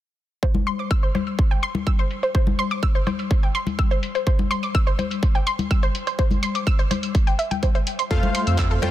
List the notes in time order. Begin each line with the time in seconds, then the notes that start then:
0.43 C5, kick, closed hi-hat
0.54 closed hi-hat, high conga
0.67 C6, closed hi-hat
0.79 D6, closed hi-hat
0.91 E6, kick, closed hi-hat
1.03 C5, closed hi-hat
1.15 C5, closed hi-hat, high conga
1.27 closed hi-hat
1.39 kick, closed hi-hat
1.51 G5, closed hi-hat
1.63 C6, closed hi-hat
1.75 closed hi-hat, high conga
1.87 E6, kick, closed hi-hat
1.99 C5, closed hi-hat
2.11 closed hi-hat
2.23 C5, closed hi-hat
2.35 C5, kick, closed hi-hat
2.47 closed hi-hat, high conga
2.59 C6, closed hi-hat
2.71 D6, closed hi-hat
2.83 E6, kick, closed hi-hat
2.95 C5, closed hi-hat
3.07 C5, closed hi-hat, high conga
3.19 closed hi-hat
3.31 kick, closed hi-hat
3.43 G5, closed hi-hat
3.55 C6, closed hi-hat
3.67 closed hi-hat, high conga
3.79 E6, kick, closed hi-hat
3.91 C5, closed hi-hat
4.03 closed hi-hat
4.15 C5, closed hi-hat
4.27 C5, kick, closed hi-hat
4.39 closed hi-hat, high conga
4.51 C6, closed hi-hat
4.63 D6, closed hi-hat
4.75 E6, kick, closed hi-hat
4.87 C5, closed hi-hat
4.99 C5, closed hi-hat, high conga
5.11 closed hi-hat
5.23 kick, closed hi-hat
5.35 G5, closed hi-hat
5.47 C6, closed hi-hat
5.59 closed hi-hat, high conga
5.71 E6, kick, closed hi-hat
5.83 C5, closed hi-hat
5.95 closed hi-hat
6.07 C5, closed hi-hat
6.19 C5, kick, closed hi-hat
6.31 closed hi-hat, high conga
6.43 C6, closed hi-hat
6.55 D6, closed hi-hat
6.67 E6, kick, closed hi-hat
6.79 C5, closed hi-hat
6.91 C5, closed hi-hat, high conga
7.03 closed hi-hat
7.15 kick, closed hi-hat
7.27 G5, closed hi-hat
7.39 E5, closed hi-hat
7.51 G5, closed hi-hat, high conga
7.63 C5, kick, closed hi-hat
7.75 C5, closed hi-hat
7.87 closed hi-hat
7.99 C6, closed hi-hat
8.11 F2 A3 F4 A4 C5 F5, kick, closed hi-hat
8.23 closed hi-hat, high conga
8.35 C6, open hi-hat
8.47 F2 E6, closed hi-hat
8.58 E6, kick, clap, closed hi-hat
8.71 A4, closed hi-hat
8.82 F2 A3 F4 A4 C5 G5, open hi-hat, cowbell, high conga